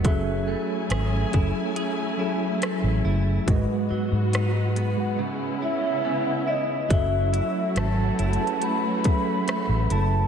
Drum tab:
HH |x-----x--x--x-----x-----|x-----x--x--------------|x--x--x--xxxx--x--x--x--|
SD |------r-----------r-----|------r-----------------|------r-----------r-----|
BD |o--------o--------------|o-----------------------|o--------------o--------|